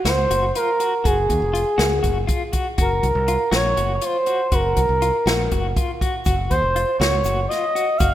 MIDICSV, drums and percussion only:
0, 0, Header, 1, 2, 480
1, 0, Start_track
1, 0, Tempo, 496689
1, 1008, Time_signature, 7, 3, 24, 8
1, 7867, End_track
2, 0, Start_track
2, 0, Title_t, "Drums"
2, 52, Note_on_c, 9, 38, 87
2, 52, Note_on_c, 9, 42, 76
2, 149, Note_off_c, 9, 38, 0
2, 149, Note_off_c, 9, 42, 0
2, 298, Note_on_c, 9, 42, 58
2, 394, Note_off_c, 9, 42, 0
2, 535, Note_on_c, 9, 42, 75
2, 632, Note_off_c, 9, 42, 0
2, 774, Note_on_c, 9, 42, 59
2, 870, Note_off_c, 9, 42, 0
2, 1017, Note_on_c, 9, 36, 91
2, 1018, Note_on_c, 9, 42, 76
2, 1113, Note_off_c, 9, 36, 0
2, 1115, Note_off_c, 9, 42, 0
2, 1255, Note_on_c, 9, 36, 63
2, 1255, Note_on_c, 9, 42, 55
2, 1351, Note_off_c, 9, 36, 0
2, 1351, Note_off_c, 9, 42, 0
2, 1496, Note_on_c, 9, 42, 55
2, 1593, Note_off_c, 9, 42, 0
2, 1731, Note_on_c, 9, 38, 88
2, 1731, Note_on_c, 9, 42, 69
2, 1828, Note_off_c, 9, 38, 0
2, 1828, Note_off_c, 9, 42, 0
2, 1968, Note_on_c, 9, 42, 50
2, 1972, Note_on_c, 9, 36, 68
2, 2065, Note_off_c, 9, 42, 0
2, 2069, Note_off_c, 9, 36, 0
2, 2208, Note_on_c, 9, 42, 72
2, 2211, Note_on_c, 9, 36, 88
2, 2305, Note_off_c, 9, 42, 0
2, 2308, Note_off_c, 9, 36, 0
2, 2444, Note_on_c, 9, 42, 56
2, 2449, Note_on_c, 9, 36, 73
2, 2541, Note_off_c, 9, 42, 0
2, 2546, Note_off_c, 9, 36, 0
2, 2686, Note_on_c, 9, 42, 70
2, 2689, Note_on_c, 9, 36, 98
2, 2783, Note_off_c, 9, 42, 0
2, 2786, Note_off_c, 9, 36, 0
2, 2930, Note_on_c, 9, 36, 60
2, 2931, Note_on_c, 9, 42, 54
2, 3027, Note_off_c, 9, 36, 0
2, 3028, Note_off_c, 9, 42, 0
2, 3169, Note_on_c, 9, 42, 61
2, 3265, Note_off_c, 9, 42, 0
2, 3406, Note_on_c, 9, 38, 94
2, 3406, Note_on_c, 9, 42, 72
2, 3502, Note_off_c, 9, 38, 0
2, 3502, Note_off_c, 9, 42, 0
2, 3646, Note_on_c, 9, 42, 56
2, 3742, Note_off_c, 9, 42, 0
2, 3880, Note_on_c, 9, 42, 78
2, 3976, Note_off_c, 9, 42, 0
2, 4119, Note_on_c, 9, 42, 60
2, 4216, Note_off_c, 9, 42, 0
2, 4366, Note_on_c, 9, 42, 80
2, 4367, Note_on_c, 9, 36, 98
2, 4462, Note_off_c, 9, 42, 0
2, 4464, Note_off_c, 9, 36, 0
2, 4606, Note_on_c, 9, 42, 62
2, 4608, Note_on_c, 9, 36, 68
2, 4703, Note_off_c, 9, 42, 0
2, 4705, Note_off_c, 9, 36, 0
2, 4850, Note_on_c, 9, 42, 56
2, 4947, Note_off_c, 9, 42, 0
2, 5094, Note_on_c, 9, 38, 89
2, 5094, Note_on_c, 9, 42, 69
2, 5191, Note_off_c, 9, 38, 0
2, 5191, Note_off_c, 9, 42, 0
2, 5330, Note_on_c, 9, 42, 50
2, 5332, Note_on_c, 9, 36, 64
2, 5426, Note_off_c, 9, 42, 0
2, 5429, Note_off_c, 9, 36, 0
2, 5571, Note_on_c, 9, 36, 91
2, 5572, Note_on_c, 9, 42, 69
2, 5668, Note_off_c, 9, 36, 0
2, 5669, Note_off_c, 9, 42, 0
2, 5812, Note_on_c, 9, 36, 76
2, 5816, Note_on_c, 9, 42, 54
2, 5909, Note_off_c, 9, 36, 0
2, 5913, Note_off_c, 9, 42, 0
2, 6040, Note_on_c, 9, 82, 53
2, 6050, Note_on_c, 9, 42, 70
2, 6051, Note_on_c, 9, 36, 90
2, 6136, Note_off_c, 9, 82, 0
2, 6146, Note_off_c, 9, 42, 0
2, 6148, Note_off_c, 9, 36, 0
2, 6289, Note_on_c, 9, 42, 51
2, 6291, Note_on_c, 9, 36, 63
2, 6386, Note_off_c, 9, 42, 0
2, 6388, Note_off_c, 9, 36, 0
2, 6532, Note_on_c, 9, 42, 52
2, 6629, Note_off_c, 9, 42, 0
2, 6766, Note_on_c, 9, 82, 17
2, 6779, Note_on_c, 9, 38, 96
2, 6779, Note_on_c, 9, 42, 67
2, 6862, Note_off_c, 9, 82, 0
2, 6875, Note_off_c, 9, 38, 0
2, 6875, Note_off_c, 9, 42, 0
2, 7001, Note_on_c, 9, 82, 59
2, 7015, Note_on_c, 9, 42, 49
2, 7098, Note_off_c, 9, 82, 0
2, 7112, Note_off_c, 9, 42, 0
2, 7261, Note_on_c, 9, 38, 31
2, 7261, Note_on_c, 9, 42, 68
2, 7358, Note_off_c, 9, 38, 0
2, 7358, Note_off_c, 9, 42, 0
2, 7501, Note_on_c, 9, 42, 55
2, 7598, Note_off_c, 9, 42, 0
2, 7725, Note_on_c, 9, 82, 56
2, 7734, Note_on_c, 9, 42, 76
2, 7735, Note_on_c, 9, 36, 105
2, 7821, Note_off_c, 9, 82, 0
2, 7831, Note_off_c, 9, 42, 0
2, 7832, Note_off_c, 9, 36, 0
2, 7867, End_track
0, 0, End_of_file